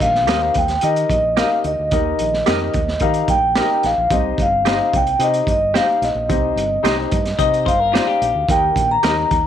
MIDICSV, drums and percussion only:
0, 0, Header, 1, 2, 480
1, 0, Start_track
1, 0, Key_signature, -3, "major"
1, 0, Tempo, 546946
1, 1688, Time_signature, 4, 2, 24, 8
1, 8310, End_track
2, 0, Start_track
2, 0, Title_t, "Drums"
2, 3, Note_on_c, 9, 36, 69
2, 9, Note_on_c, 9, 42, 74
2, 91, Note_off_c, 9, 36, 0
2, 97, Note_off_c, 9, 42, 0
2, 133, Note_on_c, 9, 38, 30
2, 221, Note_off_c, 9, 38, 0
2, 241, Note_on_c, 9, 42, 83
2, 253, Note_on_c, 9, 38, 127
2, 329, Note_off_c, 9, 42, 0
2, 341, Note_off_c, 9, 38, 0
2, 477, Note_on_c, 9, 42, 79
2, 488, Note_on_c, 9, 36, 83
2, 565, Note_off_c, 9, 42, 0
2, 575, Note_off_c, 9, 36, 0
2, 599, Note_on_c, 9, 42, 43
2, 608, Note_on_c, 9, 38, 36
2, 687, Note_off_c, 9, 42, 0
2, 695, Note_off_c, 9, 38, 0
2, 713, Note_on_c, 9, 42, 82
2, 801, Note_off_c, 9, 42, 0
2, 845, Note_on_c, 9, 42, 54
2, 933, Note_off_c, 9, 42, 0
2, 961, Note_on_c, 9, 36, 81
2, 968, Note_on_c, 9, 42, 72
2, 1049, Note_off_c, 9, 36, 0
2, 1055, Note_off_c, 9, 42, 0
2, 1206, Note_on_c, 9, 38, 112
2, 1206, Note_on_c, 9, 42, 91
2, 1293, Note_off_c, 9, 38, 0
2, 1293, Note_off_c, 9, 42, 0
2, 1442, Note_on_c, 9, 42, 62
2, 1530, Note_off_c, 9, 42, 0
2, 1679, Note_on_c, 9, 42, 84
2, 1684, Note_on_c, 9, 36, 98
2, 1767, Note_off_c, 9, 42, 0
2, 1772, Note_off_c, 9, 36, 0
2, 1922, Note_on_c, 9, 42, 69
2, 2009, Note_off_c, 9, 42, 0
2, 2053, Note_on_c, 9, 38, 31
2, 2140, Note_off_c, 9, 38, 0
2, 2161, Note_on_c, 9, 42, 79
2, 2174, Note_on_c, 9, 38, 106
2, 2249, Note_off_c, 9, 42, 0
2, 2261, Note_off_c, 9, 38, 0
2, 2401, Note_on_c, 9, 42, 72
2, 2408, Note_on_c, 9, 36, 94
2, 2489, Note_off_c, 9, 42, 0
2, 2496, Note_off_c, 9, 36, 0
2, 2531, Note_on_c, 9, 38, 34
2, 2619, Note_off_c, 9, 38, 0
2, 2630, Note_on_c, 9, 42, 82
2, 2639, Note_on_c, 9, 36, 81
2, 2718, Note_off_c, 9, 42, 0
2, 2726, Note_off_c, 9, 36, 0
2, 2754, Note_on_c, 9, 42, 52
2, 2842, Note_off_c, 9, 42, 0
2, 2879, Note_on_c, 9, 36, 81
2, 2879, Note_on_c, 9, 42, 69
2, 2966, Note_off_c, 9, 42, 0
2, 2967, Note_off_c, 9, 36, 0
2, 3120, Note_on_c, 9, 38, 112
2, 3120, Note_on_c, 9, 42, 85
2, 3208, Note_off_c, 9, 38, 0
2, 3208, Note_off_c, 9, 42, 0
2, 3363, Note_on_c, 9, 42, 69
2, 3375, Note_on_c, 9, 38, 34
2, 3451, Note_off_c, 9, 42, 0
2, 3463, Note_off_c, 9, 38, 0
2, 3603, Note_on_c, 9, 36, 114
2, 3603, Note_on_c, 9, 42, 81
2, 3690, Note_off_c, 9, 36, 0
2, 3690, Note_off_c, 9, 42, 0
2, 3844, Note_on_c, 9, 36, 74
2, 3853, Note_on_c, 9, 42, 74
2, 3932, Note_off_c, 9, 36, 0
2, 3941, Note_off_c, 9, 42, 0
2, 4087, Note_on_c, 9, 42, 81
2, 4099, Note_on_c, 9, 38, 112
2, 4175, Note_off_c, 9, 42, 0
2, 4187, Note_off_c, 9, 38, 0
2, 4330, Note_on_c, 9, 42, 67
2, 4331, Note_on_c, 9, 36, 98
2, 4418, Note_off_c, 9, 36, 0
2, 4418, Note_off_c, 9, 42, 0
2, 4447, Note_on_c, 9, 42, 43
2, 4534, Note_off_c, 9, 42, 0
2, 4561, Note_on_c, 9, 42, 87
2, 4649, Note_off_c, 9, 42, 0
2, 4684, Note_on_c, 9, 42, 52
2, 4771, Note_off_c, 9, 42, 0
2, 4799, Note_on_c, 9, 36, 89
2, 4808, Note_on_c, 9, 42, 67
2, 4887, Note_off_c, 9, 36, 0
2, 4896, Note_off_c, 9, 42, 0
2, 5050, Note_on_c, 9, 38, 110
2, 5050, Note_on_c, 9, 42, 87
2, 5138, Note_off_c, 9, 38, 0
2, 5138, Note_off_c, 9, 42, 0
2, 5286, Note_on_c, 9, 42, 67
2, 5298, Note_on_c, 9, 38, 33
2, 5374, Note_off_c, 9, 42, 0
2, 5386, Note_off_c, 9, 38, 0
2, 5526, Note_on_c, 9, 36, 109
2, 5529, Note_on_c, 9, 42, 76
2, 5613, Note_off_c, 9, 36, 0
2, 5617, Note_off_c, 9, 42, 0
2, 5770, Note_on_c, 9, 42, 75
2, 5858, Note_off_c, 9, 42, 0
2, 6010, Note_on_c, 9, 42, 87
2, 6022, Note_on_c, 9, 38, 123
2, 6097, Note_off_c, 9, 42, 0
2, 6110, Note_off_c, 9, 38, 0
2, 6244, Note_on_c, 9, 42, 75
2, 6249, Note_on_c, 9, 36, 92
2, 6332, Note_off_c, 9, 42, 0
2, 6337, Note_off_c, 9, 36, 0
2, 6367, Note_on_c, 9, 42, 47
2, 6376, Note_on_c, 9, 38, 33
2, 6455, Note_off_c, 9, 42, 0
2, 6463, Note_off_c, 9, 38, 0
2, 6482, Note_on_c, 9, 36, 80
2, 6484, Note_on_c, 9, 42, 89
2, 6570, Note_off_c, 9, 36, 0
2, 6571, Note_off_c, 9, 42, 0
2, 6614, Note_on_c, 9, 42, 53
2, 6702, Note_off_c, 9, 42, 0
2, 6725, Note_on_c, 9, 36, 80
2, 6741, Note_on_c, 9, 42, 65
2, 6813, Note_off_c, 9, 36, 0
2, 6829, Note_off_c, 9, 42, 0
2, 6980, Note_on_c, 9, 38, 107
2, 6980, Note_on_c, 9, 42, 86
2, 7068, Note_off_c, 9, 38, 0
2, 7068, Note_off_c, 9, 42, 0
2, 7213, Note_on_c, 9, 42, 65
2, 7301, Note_off_c, 9, 42, 0
2, 7447, Note_on_c, 9, 36, 97
2, 7453, Note_on_c, 9, 42, 85
2, 7535, Note_off_c, 9, 36, 0
2, 7541, Note_off_c, 9, 42, 0
2, 7687, Note_on_c, 9, 36, 78
2, 7695, Note_on_c, 9, 42, 69
2, 7774, Note_off_c, 9, 36, 0
2, 7783, Note_off_c, 9, 42, 0
2, 7926, Note_on_c, 9, 42, 80
2, 7938, Note_on_c, 9, 38, 120
2, 8013, Note_off_c, 9, 42, 0
2, 8026, Note_off_c, 9, 38, 0
2, 8170, Note_on_c, 9, 42, 75
2, 8172, Note_on_c, 9, 36, 90
2, 8258, Note_off_c, 9, 42, 0
2, 8260, Note_off_c, 9, 36, 0
2, 8310, End_track
0, 0, End_of_file